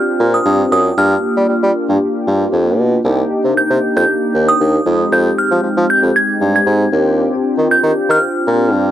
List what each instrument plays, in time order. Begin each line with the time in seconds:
Already playing: analog polysynth C4 D4 F4 G4, synth bell F6
0.20 bassoon A#2
0.34 synth bell D#6
0.45 bassoon G2
0.71 bassoon F#2, synth bell D#6
0.97 bassoon G2, analog polysynth A#3 D4 F4 G4, synth bell F6
1.37 bassoon G3
1.49 bassoon G3
1.63 bassoon G3
1.89 bassoon G2
2.27 bassoon G2
2.52 bassoon F2
2.78 bassoon B2
3.04 bassoon C2, analog polysynth A#3 D4 D#4 G4
3.44 bassoon C3
3.56 bassoon C3, synth bell G6
3.70 bassoon C3
3.96 bassoon F2, synth bell G6
4.34 bassoon D#2
4.49 synth bell D#6
4.60 bassoon D#2
4.85 bassoon F2, analog polysynth G#3 C4 D#4 G4
5.12 bassoon F2, synth bell G6
5.38 synth bell F6
5.51 bassoon F3
5.63 bassoon F3
5.77 bassoon F3
5.90 synth bell G6
6.03 bassoon F2
6.16 synth bell G#6
6.41 bassoon G2
6.56 synth bell G#6
6.66 bassoon G#2
6.91 bassoon D#2, analog polysynth C4 D4 F4 G4
7.58 bassoon D#3
7.70 bassoon D#3, synth bell G6
7.83 bassoon D#3
8.09 bassoon D#3, synth bell F6
8.47 bassoon A#2
8.73 bassoon G2